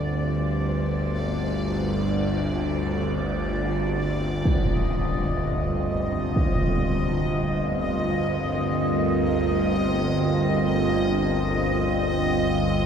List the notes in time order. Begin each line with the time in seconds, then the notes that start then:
Already playing: G1 D2 G3 C4 F4 C5 D5
4.45 D#5, impact
5.21 D#5
6.36 impact
7.45 A#4